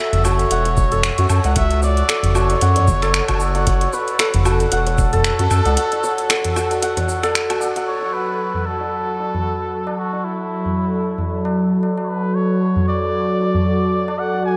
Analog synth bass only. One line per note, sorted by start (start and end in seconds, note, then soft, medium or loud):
0.14 0.45 F#1 loud
0.52 1.11 E1 medium
1.19 1.27 F#2 medium
1.30 1.40 F#2 loud
1.45 2.03 C#2 medium
2.24 2.56 F#1 loud
2.62 2.90 F#2 medium
2.88 3.21 F#1 medium
3.29 3.87 F#1 medium
4.35 4.66 F#1 loud
4.73 5.32 E1 medium
5.40 5.47 F#2 medium
5.51 5.61 F#2 medium
5.66 5.78 C#2 medium